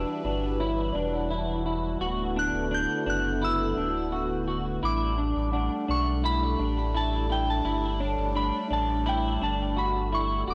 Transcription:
Already playing: E3 G3 D4 E4 F#4 B4 E6
0.24 G1 D4
0.59 E4 C#5
0.93 E1 D4 D5
1.15 F#5
1.30 E4
1.38 A5
1.66 E4
2.00 D1 D3 A3 B3 F#4
2.37 D4 F#6
2.53 D1
2.71 D4 G6
3.06 F#1 D4 B4 F#6
3.42 E4 E6
3.77 D1 D4
4.12 F#4
4.48 F#4
4.82 A1 G3 A3 D4 E4 D6
5.18 D4
5.36 A1
5.52 D4 F#5
5.88 B1 D4 C#6
6.24 E4 B5
6.59 A1 D4
6.95 E4 A5
7.30 E4 G5
7.50 A5
7.65 G1 G3 A3 E4
8.00 D4 C#5
8.18 G1
8.35 D4 B5
8.71 A1 D4 A5
9.06 E4 G5
9.42 G1 D4 A5
9.77 F#4 B5
10.12 E4 C#6
10.47 D1 D3 A3 B3 E4 F#4 D6

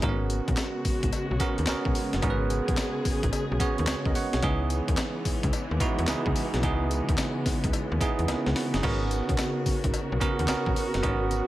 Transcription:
0.02 G#1 C#3 G#3 A#3 B3 C#4 F#4 A#4, kick, closed hi-hat, cowbell
0.09 B3
0.30 closed hi-hat, tambourine
0.48 B1, kick, closed hi-hat
0.57 snare, clap, closed hi-hat, tambourine, cowbell
0.85 G#1, kick, open hi-hat, tambourine
1.03 G#1, kick, closed hi-hat
1.13 closed hi-hat, tambourine, cowbell
1.31 B1
1.40 B3 C#4 F#4 A#4, kick, closed hi-hat, tambourine
1.58 D#2, closed hi-hat
1.67 B1 B3 C#4 F#4 A#4, snare, clap, closed hi-hat, tambourine, cowbell
1.85 B1, kick
1.95 open hi-hat, tambourine
2.13 F#1, snare, closed hi-hat
2.22 G#1 B3 C#4 F#4 G#4 A#4, kick, closed hi-hat, cowbell
2.30 B4
2.50 closed hi-hat, tambourine
2.68 B1, kick, closed hi-hat
2.77 snare, clap, closed hi-hat, tambourine, cowbell
3.05 G#1, kick, open hi-hat, tambourine
3.23 G#1, kick, closed hi-hat
3.33 closed hi-hat, tambourine, cowbell
3.52 B1
3.60 B3 C#4 F#4 C#5, kick, closed hi-hat, tambourine
3.78 D#2, closed hi-hat
3.87 C#2 G#4 C#5, snare, clap, closed hi-hat, tambourine, cowbell
4.05 C#2 A#4 D#5, kick
4.15 C#5 F#5, open hi-hat, tambourine
4.33 B1 G#4 C#5, snare, closed hi-hat
4.42 C#2 C#3 E3 G#3 B3 D#4 E4 G#4, kick, closed hi-hat, cowbell
4.70 closed hi-hat, tambourine
4.88 D#2, kick, closed hi-hat
4.97 snare, clap, closed hi-hat, tambourine, cowbell
5.25 C#2, kick, open hi-hat, tambourine
5.43 C#2, kick, closed hi-hat
5.53 closed hi-hat, tambourine, cowbell
5.71 D#2
5.80 B3 D#4 E4 F#4, kick, closed hi-hat, tambourine
5.99 E2, closed hi-hat
6.07 C#2 B3 D#4 E4 G#4, snare, clap, closed hi-hat, tambourine, cowbell
6.26 C#2, kick
6.36 open hi-hat, tambourine
6.54 B1, snare, closed hi-hat
6.63 C#2 B3 D#4 E4 G#4, kick, closed hi-hat, cowbell
6.91 closed hi-hat, tambourine
7.09 D#2, kick, closed hi-hat
7.18 snare, clap, closed hi-hat, tambourine, cowbell
7.46 C#2, kick, snare, open hi-hat, tambourine
7.64 C#2, kick, closed hi-hat
7.73 closed hi-hat, tambourine, cowbell
7.92 D#2
8.01 B3 D#4 E4 G#4, kick, closed hi-hat, tambourine
8.19 E2, closed hi-hat
8.28 C#2 E4 A#4, snare, closed hi-hat, cowbell
8.46 C#2, snare
8.56 F#4 B4, snare, open hi-hat
8.74 F#1 D#4 G#4, snare, closed hi-hat
8.83 G#1 B3 C#4 F#4 A#4, kick, crash, cowbell
9.11 closed hi-hat, tambourine
9.29 B1, kick, closed hi-hat
9.38 snare, clap, closed hi-hat, tambourine, cowbell
9.66 G#1, kick, open hi-hat, tambourine
9.84 G#1, kick, closed hi-hat
9.94 closed hi-hat, tambourine, cowbell
10.12 B1
10.20 B3 C#4 F#4 A#4, kick, closed hi-hat, tambourine
10.39 D#2, closed hi-hat
10.48 B1 B3 C#4 F#4 A#4, snare, clap, closed hi-hat, tambourine, cowbell
10.66 B1, kick
10.76 open hi-hat, tambourine
10.94 F#1, snare, closed hi-hat
11.03 G#1 B3 C#4 F#4 A#4, kick, closed hi-hat, cowbell
11.31 closed hi-hat, tambourine

